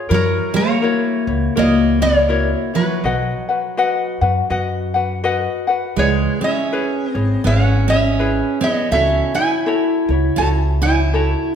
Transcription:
0.09 F#2 F#3 E4 F#4 A#4 C#5
0.14 A#4
0.53 A#3 E4 F#4 C#5
0.82 E4 F#4 A#4 C#5
1.27 C#2 E4 F#4 C#5
1.55 C#2 A#3 E4 F#4 A#4 C#5 D#5
2.00 A#3 E4 F#4 C#5
2.29 E4 F#4 A#4 C#5
2.74 F#3 E4 F#4 B4 C#5
3.04 B1 F#4 B4 D#5 F#5
3.49 F#4 B4 F#5
3.77 F#4 B4 D#5 F#5
4.21 F#2 F#4 B4 F#5
4.50 F#2 F#4 B4 D#5 F#5
4.94 F#4 B4 F#5
5.24 F#4 B4 D#5 F#5
5.67 F#4 B4 F#5
5.96 C#2 G#3 E4 G#4 B4 C#5
6.41 C#4 E4 G#4 C#5 E5
6.72 E4 G#4 B4 C#5
7.07 C4 D#5
7.14 G#1 E4 G#4 C#5
7.44 G#1 C#4 E4 G#4 B4 C#5 F5
7.64 F#5
7.88 C#4 G#4 C#5 E5
7.92 E4
8.19 E4 G#4 B4 C#5
8.61 B3 E4 G#4 C#5 D#5
8.91 C#2 C#4 E4 F#4 A4 C#5 E5
9.34 E4 F#4 C#5 G#5
9.39 E4
9.66 E4 F#4 A4 C#5
10.09 C#2 E4 F#4 C#5
10.36 C#2 F#4 A4 A5
10.41 E4 F#4 C#5
10.82 E4 C#5 G#5
10.86 E4 F#4
11.13 E4 F#4 A4 C#5

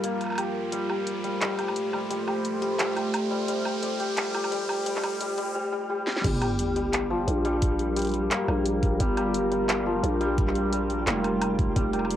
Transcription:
Already playing: F3 G3 F4 G4 A#4, riser
0.04 A#3, closed hi-hat
0.21 closed hi-hat, low woodblock
0.24 low woodblock
0.26 low woodblock
0.30 low woodblock
0.32 low woodblock
0.36 G4, closed hi-hat, low woodblock
0.38 low woodblock
0.72 G3 A3 C5, closed hi-hat
0.90 G4, low woodblock
1.07 closed hi-hat
1.24 G3, closed hi-hat
1.41 G3, clap, closed hi-hat
1.58 G4, closed hi-hat, low woodblock
1.68 low woodblock
1.76 closed hi-hat
1.93 G3, low woodblock
2.10 G3, closed hi-hat
2.28 G4, low woodblock
2.45 closed hi-hat
2.62 G3, closed hi-hat
2.79 G3, clap, closed hi-hat
2.96 G4, closed hi-hat, low woodblock
3.14 closed hi-hat, low woodblock
3.31 G3
3.48 G3, closed hi-hat
3.65 G4, low woodblock
3.83 G3, closed hi-hat
4.00 G4, closed hi-hat
4.17 G3, clap, closed hi-hat
4.34 G4, closed hi-hat, low woodblock
4.44 low woodblock
4.52 G3, closed hi-hat
4.69 G4, low woodblock
4.86 G3, closed hi-hat
4.96 clap
5.03 G3, closed hi-hat, low woodblock
5.21 G3, closed hi-hat
5.38 G3, closed hi-hat
5.55 G3
5.72 G3
5.90 G3
6.07 G3, snare
6.16 snare
6.24 G1 G3 F4 G4 A#4, kick, closed hi-hat, crash, sub drop
6.41 G4, closed hi-hat, low woodblock
6.59 closed hi-hat
6.76 G3, closed hi-hat
6.93 clap, closed hi-hat
7.10 F3
7.27 A#1, closed hi-hat
7.45 G3, closed hi-hat
7.62 kick, closed hi-hat
7.79 closed hi-hat
7.96 G3, closed hi-hat
7.99 closed hi-hat
8.02 closed hi-hat
8.05 closed hi-hat
8.07 closed hi-hat
8.09 closed hi-hat
8.12 closed hi-hat
8.14 closed hi-hat
8.31 A#3, clap, closed hi-hat
8.48 A#1, low woodblock
8.66 closed hi-hat
8.83 kick, closed hi-hat
9.00 G1 G3, kick, closed hi-hat
9.17 G4, closed hi-hat, low woodblock
9.34 closed hi-hat
9.52 G3, closed hi-hat
9.69 clap, closed hi-hat
9.86 F3
10.03 A#1, closed hi-hat
10.21 G3, closed hi-hat
10.38 kick, closed hi-hat
10.48 clap
10.55 closed hi-hat
10.73 G3, closed hi-hat
10.90 closed hi-hat
11.07 F1 A#3, clap, closed hi-hat
11.24 closed hi-hat, low woodblock
11.41 closed hi-hat, low woodblock
11.59 kick, closed hi-hat
11.76 F1 G3 A3 C5, kick, closed hi-hat
11.93 G4, closed hi-hat, low woodblock
11.99 low woodblock
12.05 low woodblock
12.10 closed hi-hat

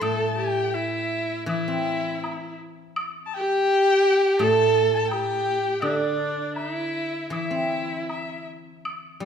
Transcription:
Already playing: G3
0.01 A2 A4 A5, high woodblock
0.38 G4 G5
0.74 E4 E5
1.46 E3 E4 E5, high woodblock
1.68 C4
2.24 high woodblock, low woodblock
2.96 high woodblock
3.26 A5
3.33 G4 G5
4.39 A2 A4 A5, high woodblock
4.94 A5
5.05 A4
5.10 G4 G5, high woodblock, low woodblock
5.81 D3 D4 D5, high woodblock
5.90 E5
5.95 D5
6.56 E4 E5, low woodblock
7.30 E3 E4 E5, high woodblock
7.51 C4
8.09 E5, high woodblock, low woodblock
8.85 high woodblock
9.20 G3

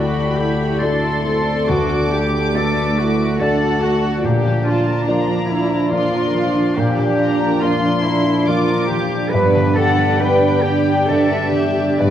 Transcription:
Already playing: D2 D3 A3 D4 E4 F#4 G4 A4 D5 F#5
0.00 B5
0.39 F#4 G4 A4
0.81 A3 D4 F#4 A4 D5 C6
1.04 D4
1.24 A3 C4 A4
1.48 D4
1.69 D2 D3 B3 D4 F#4 D6
1.90 A3
2.11 A3 D4 G4
2.32 F#4
2.54 A3 D4 F#4 A4 B4 D5
2.75 F#4
2.96 E4 F#4 A4
3.18 F#4
3.40 A3 D4 F#4 A4 D5 F#5 A5
3.62 D4
3.83 A3 F#4
4.04 D4
4.23 A#2 F3 A#3 D4 G4 D5
4.45 F3 D4
4.65 D4 F4 A5
4.87 A#4
5.07 F3 A#3 D4 F4 A#4 D5 A#5
5.29 D4
5.49 A#3 E4 A#4
5.72 D4
5.91 F3 A#3 F4 D5 C6
6.12 D4 A#4
6.33 F3 F4
6.56 D4
6.77 A#2 A#3 G4
6.98 F3 D4
7.19 D4 F4 A#5
7.41 A#4
7.61 F3 A#3 F4 A#4 D5 C6
7.83 D4
8.04 A#3 E4 A#4
8.25 D4 F4
8.47 F3 A#3 F4 D5 D6
8.68 D4 A#4
8.90 F3 F4 G4
9.11 D4
9.31 G2 G3 B3 D4 B4 D5
9.55 D3 D4
9.76 D4 G4 A4 F#5
9.97 G3 B4
10.19 B3 D4 G4 B4 D5 G5
10.42 D4
10.63 B3 G4 B4
10.86 D4
11.08 D3 B3 G4 A4 D5 E5
11.32 B4
11.53 D3 G4
11.77 D4
11.98 G2 B3 D4 B4 D5

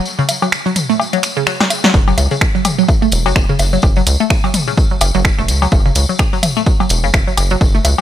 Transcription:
0.05 tambourine
0.18 C#3, tambourine
0.29 closed hi-hat, tambourine, low woodblock
0.42 F#3, tambourine, cowbell
0.52 finger snap, tambourine
0.66 F#3, tambourine
0.76 closed hi-hat, mid tom, tambourine
0.90 A3, tambourine
1.00 tambourine, cowbell, low woodblock
1.13 F#3, closed hi-hat, tambourine
1.23 finger snap, closed hi-hat, tambourine
1.37 C#3, tambourine
1.47 F#3, finger snap, tambourine
1.60 F#3, snare, tambourine, cowbell
1.70 closed hi-hat, tambourine, low woodblock
1.84 F#3, snare, tambourine
1.94 F#1, kick, tambourine
2.08 F#3, tambourine, cowbell
2.18 C#2, closed hi-hat, tambourine, low woodblock
2.31 C#3, tambourine
2.41 finger snap, kick, tambourine
2.55 F#3, tambourine
2.65 closed hi-hat, mid tom, tambourine, cowbell
2.78 F#3, tambourine
2.88 kick, tambourine, low woodblock
3.02 A3, tambourine
3.12 E1, closed hi-hat, tambourine
3.26 F#1 F#3, tambourine, cowbell
3.36 F#1, finger snap, kick
3.49 C#3, tambourine
3.59 F#1, closed hi-hat, tambourine, low woodblock
3.73 F#3, tambourine
3.82 F#1, kick, tambourine, cowbell
3.96 F#3, tambourine
4.07 C#2, closed hi-hat, tambourine
4.20 A3, tambourine
4.30 finger snap, kick, tambourine, low woodblock
4.44 F#3, tambourine, cowbell
4.54 closed hi-hat, mid tom, tambourine
4.67 C#3, tambourine
4.77 kick, tambourine
4.90 F#3, tambourine
5.01 F#1, closed hi-hat, tambourine, cowbell, low woodblock
5.14 F#1 F#3, tambourine
5.25 finger snap, kick, tambourine
5.38 E1 A3, tambourine
5.48 C#2, closed hi-hat, tambourine
5.62 F#3, tambourine, cowbell
5.72 F#1, kick, tambourine, low woodblock
5.85 C#3, tambourine
5.95 C#2, closed hi-hat, tambourine
6.09 F#3, tambourine
6.19 finger snap, kick, tambourine, cowbell
6.33 F#3, tambourine
6.43 closed hi-hat, mid tom, tambourine, low woodblock
6.57 A3, tambourine
6.66 kick, tambourine
6.80 F#3, tambourine, cowbell
6.89 E1, closed hi-hat, tambourine
7.04 F#1 C#3, tambourine
7.13 F#1, finger snap, kick, tambourine, low woodblock
7.27 F#3, tambourine
7.37 F#1, closed hi-hat, tambourine, cowbell
7.50 F#3, tambourine
7.61 F#1, kick, tambourine
7.75 A3, tambourine
7.85 C#2, closed hi-hat, tambourine, low woodblock

